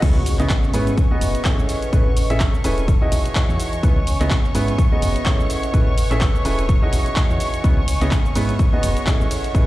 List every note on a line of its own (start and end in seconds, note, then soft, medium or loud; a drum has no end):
0.00 0.36 C#2 loud
0.00 0.13 B3 medium
0.00 1.27 C#4 medium
0.00 0.13 C#4 medium
0.00 0.13 E4 medium
0.00 0.42 F#4 medium
0.00 0.41 G#4 medium
0.00 0.13 G#4 medium
0.00 0.13 B4 medium
0.00 9.67 C#5 medium
0.00 0.41 F#5 medium
0.00 9.67 C#6 medium
0.00 kick loud
0.00 closed hi-hat medium
0.00 crash loud
0.00 impact medium
0.00 shaker soft
0.09 3.27 B4 medium
0.24 1.69 G#5 loud
0.24 open hi-hat loud
0.24 shaker medium
0.39 0.48 C#2 medium
0.39 0.54 B3 medium
0.39 0.54 C#4 medium
0.39 0.54 E4 medium
0.39 0.54 G#4 medium
0.39 0.54 D#5 loud
0.39 clap soft
0.39 closed hi-hat medium
0.39 shaker soft
0.46 0.98 E5 medium
0.46 clap loud
0.50 kick loud
0.50 closed hi-hat medium
0.50 shaker soft
0.64 shaker soft
0.74 1.08 G#2 medium
0.74 0.91 B3 medium
0.74 0.91 C#4 medium
0.74 0.91 E4 medium
0.74 0.91 G#4 medium
0.74 0.91 B4 medium
0.74 open hi-hat medium
0.74 shaker medium
0.87 closed hi-hat medium
0.87 shaker soft
0.97 2.16 D#5 medium
0.97 kick loud
0.97 closed hi-hat medium
0.97 shaker soft
1.11 1.43 B3 medium
1.11 1.43 D#4 medium
1.11 1.43 F#4 medium
1.11 1.43 G#4 medium
1.11 1.43 D#5 medium
1.21 1.33 F#1 medium
1.21 open hi-hat loud
1.21 shaker medium
1.29 2.17 F#5 medium
1.35 closed hi-hat medium
1.35 shaker soft
1.45 1.90 C#4 medium
1.45 1.90 E4 medium
1.45 1.90 G#4 medium
1.45 1.90 A4 medium
1.45 1.90 C#5 medium
1.45 kick loud
1.45 clap loud
1.45 closed hi-hat medium
1.45 shaker soft
1.59 1.67 G#1 medium
1.59 shaker soft
1.69 3.28 C#4 medium
1.69 open hi-hat medium
1.69 shaker medium
1.82 closed hi-hat medium
1.82 shaker soft
1.93 2.27 A1 loud
1.93 2.04 C#4 medium
1.93 2.04 E4 medium
1.93 2.04 G#4 medium
1.93 2.04 A4 medium
1.93 2.04 B4 medium
1.93 kick loud
1.93 closed hi-hat medium
1.93 shaker soft
2.17 open hi-hat loud
2.17 shaker medium
2.23 2.88 A5 medium
2.30 2.39 A1 medium
2.30 2.45 C#4 medium
2.30 2.45 E4 medium
2.30 2.45 G#4 medium
2.30 2.45 A4 medium
2.30 2.45 E5 loud
2.30 closed hi-hat medium
2.30 shaker soft
2.40 kick loud
2.40 clap loud
2.40 closed hi-hat medium
2.40 shaker soft
2.54 shaker soft
2.64 2.98 E1 medium
2.64 2.81 C#4 medium
2.64 2.81 E4 medium
2.64 2.81 G#4 medium
2.64 2.81 A4 medium
2.64 2.81 B4 loud
2.64 open hi-hat loud
2.64 shaker medium
2.78 closed hi-hat medium
2.78 shaker soft
2.88 4.23 E3 medium
2.88 kick loud
2.88 closed hi-hat medium
2.88 shaker soft
3.02 3.33 D#4 medium
3.02 3.33 E4 medium
3.02 3.33 F#4 medium
3.02 3.33 G#4 medium
3.02 3.33 D#5 medium
3.12 3.23 B1 medium
3.12 open hi-hat loud
3.12 shaker medium
3.26 closed hi-hat medium
3.26 shaker soft
3.32 3.81 G#4 medium
3.32 3.83 D#5 medium
3.32 4.23 F#5 medium
3.32 5.50 G#5 medium
3.32 kick loud
3.32 clap loud
3.36 3.81 D#4 medium
3.36 3.81 E4 medium
3.36 3.81 F#4 medium
3.36 3.81 C#5 medium
3.36 closed hi-hat medium
3.36 shaker soft
3.49 3.58 E2 medium
3.49 shaker soft
3.60 open hi-hat loud
3.60 shaker medium
3.73 closed hi-hat medium
3.73 shaker soft
3.83 4.17 C#2 loud
3.83 3.94 B3 medium
3.83 3.94 C#4 medium
3.83 5.08 C#4 medium
3.83 3.94 E4 medium
3.83 3.94 G#4 medium
3.83 3.94 B4 medium
3.83 kick loud
3.83 closed hi-hat medium
3.83 shaker soft
4.02 7.08 B4 medium
4.07 open hi-hat loud
4.07 shaker medium
4.20 4.29 C#2 medium
4.20 4.35 B3 medium
4.20 4.35 C#4 medium
4.20 4.35 E4 medium
4.20 4.35 G#4 medium
4.20 4.35 D#5 loud
4.20 clap soft
4.20 closed hi-hat medium
4.20 shaker soft
4.27 4.79 E5 medium
4.27 kick loud
4.27 clap loud
4.27 closed hi-hat medium
4.31 shaker soft
4.45 shaker soft
4.55 4.88 G#2 medium
4.55 4.71 B3 medium
4.55 4.71 C#4 medium
4.55 4.71 E4 medium
4.55 4.71 G#4 medium
4.55 4.71 B4 loud
4.55 open hi-hat loud
4.55 shaker medium
4.68 closed hi-hat medium
4.68 shaker soft
4.78 5.98 D#5 medium
4.78 kick loud
4.78 closed hi-hat medium
4.78 shaker soft
4.92 5.24 B3 medium
4.92 5.24 D#4 medium
4.92 5.24 F#4 medium
4.92 5.24 G#4 medium
4.92 5.24 D#5 medium
5.02 5.14 F#1 medium
5.02 open hi-hat loud
5.02 shaker medium
5.12 5.98 F#5 medium
5.16 closed hi-hat medium
5.16 shaker soft
5.26 5.71 C#4 medium
5.26 5.71 E4 medium
5.26 5.71 G#4 medium
5.26 5.71 A4 medium
5.26 5.71 C#5 medium
5.26 kick loud
5.26 clap loud
5.26 closed hi-hat medium
5.26 shaker soft
5.40 5.48 G#1 medium
5.40 shaker soft
5.50 7.08 C#4 medium
5.50 open hi-hat loud
5.50 shaker medium
5.63 closed hi-hat medium
5.63 shaker soft
5.74 6.08 A1 loud
5.74 5.85 C#4 medium
5.74 5.85 E4 medium
5.74 5.85 G#4 medium
5.74 5.85 A4 medium
5.74 5.85 B4 medium
5.74 kick loud
5.74 closed hi-hat medium
5.74 shaker soft
5.98 open hi-hat loud
5.98 shaker medium
6.04 6.69 A5 medium
6.11 6.20 A1 medium
6.11 6.26 C#4 medium
6.11 6.26 E4 medium
6.11 6.26 G#4 medium
6.11 6.26 A4 medium
6.11 6.26 E5 medium
6.11 clap soft
6.11 closed hi-hat medium
6.11 shaker soft
6.21 kick loud
6.21 clap loud
6.21 closed hi-hat soft
6.21 shaker soft
6.35 shaker soft
6.45 6.79 E1 medium
6.45 6.62 C#4 medium
6.45 6.62 E4 medium
6.45 6.62 G#4 medium
6.45 6.62 A4 medium
6.45 6.62 B4 medium
6.45 open hi-hat loud
6.45 shaker medium
6.59 closed hi-hat medium
6.59 shaker soft
6.69 8.04 E3 medium
6.69 kick loud
6.69 closed hi-hat medium
6.69 shaker soft
6.82 7.14 D#4 medium
6.82 7.14 E4 medium
6.82 7.14 F#4 medium
6.82 7.14 G#4 medium
6.82 7.64 D#5 medium
6.82 7.14 D#5 medium
6.93 7.04 B1 medium
6.93 open hi-hat loud
6.93 shaker medium
7.06 closed hi-hat medium
7.06 shaker soft
7.13 7.62 D#4 medium
7.13 7.62 E4 medium
7.13 7.62 F#4 medium
7.13 7.62 C#5 medium
7.13 8.04 F#5 medium
7.13 9.31 G#5 medium
7.13 kick loud
7.13 clap loud
7.13 closed hi-hat medium
7.17 7.62 G#4 medium
7.17 shaker soft
7.30 7.39 E2 medium
7.30 shaker soft
7.40 open hi-hat loud
7.40 shaker medium
7.54 closed hi-hat medium
7.54 shaker soft
7.64 7.98 C#2 loud
7.64 7.75 B3 medium
7.64 8.89 C#4 medium
7.64 7.75 C#4 medium
7.64 7.75 E4 medium
7.64 7.75 G#4 medium
7.64 7.75 B4 medium
7.64 kick loud
7.64 closed hi-hat medium
7.64 shaker soft
7.88 open hi-hat loud
7.88 ride medium
7.88 shaker medium
8.01 8.10 C#2 medium
8.01 8.16 B3 medium
8.01 8.16 C#4 medium
8.01 8.16 E4 medium
8.01 8.16 G#4 medium
8.01 8.16 D#5 loud
8.01 clap soft
8.01 closed hi-hat medium
8.01 shaker soft
8.08 9.67 B4 loud
8.08 8.59 E5 medium
8.08 clap loud
8.12 kick loud
8.12 closed hi-hat soft
8.12 shaker soft
8.26 shaker soft
8.35 8.69 G#2 medium
8.35 8.52 B3 medium
8.35 8.52 C#4 medium
8.35 8.52 E4 medium
8.35 8.52 G#4 medium
8.35 8.52 B4 medium
8.35 open hi-hat medium
8.35 ride medium
8.35 shaker medium
8.49 closed hi-hat medium
8.49 shaker soft
8.59 9.67 D#5 medium
8.59 kick loud
8.59 closed hi-hat medium
8.59 shaker soft
8.73 9.05 B3 medium
8.73 9.05 D#4 medium
8.73 9.05 F#4 medium
8.73 9.05 G#4 medium
8.73 9.05 D#5 medium
8.83 8.95 F#1 medium
8.83 open hi-hat loud
8.83 ride medium
8.83 shaker medium
8.93 9.67 F#5 medium
8.93 closed hi-hat medium
8.97 shaker soft
9.07 9.52 C#4 medium
9.07 9.52 E4 medium
9.07 9.52 G#4 medium
9.07 9.52 A4 medium
9.07 9.52 C#5 medium
9.07 kick loud
9.07 clap loud
9.07 closed hi-hat medium
9.07 shaker soft
9.21 9.29 G#1 medium
9.21 shaker soft
9.31 9.67 C#4 medium
9.31 open hi-hat medium
9.31 ride medium
9.31 shaker medium
9.44 closed hi-hat medium
9.44 shaker soft
9.52 9.67 A1 loud
9.52 9.66 C#4 medium
9.52 9.66 E4 medium
9.52 9.66 G#4 medium
9.52 9.66 A4 medium
9.52 9.66 B4 medium
9.52 9.67 A5 medium
9.52 kick loud
9.52 closed hi-hat medium
9.52 shaker soft